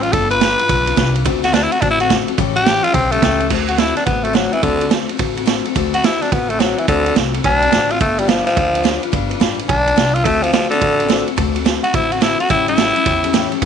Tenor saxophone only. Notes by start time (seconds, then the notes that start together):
0.03 F4
0.12 A4
0.31 B4
1.44 F#4
1.54 D4
1.63 E4
1.72 F#4
1.81 D4
1.91 E4
2.01 F#4
2.56 G4
2.84 F4
2.94 C4
3.12 A3
3.69 F#4
3.79 E4
3.97 D4
4.06 B3
4.24 A3
4.35 F#3
4.53 E3
4.63 D3
5.94 F#4
6.05 E4
6.22 D4
6.32 B3
6.50 A3
6.60 F#3
6.79 E3
6.88 D3
7.45 D4
7.91 F4
8.01 A3
8.19 G3
8.29 F3
8.46 F3
9.69 D4
10.14 F4
10.24 A3
10.43 F3
10.53 F3
10.70 D3
11.83 F#4
11.95 E4
12.12 F#4
12.22 E4
12.40 F#4
12.51 E4
12.68 E4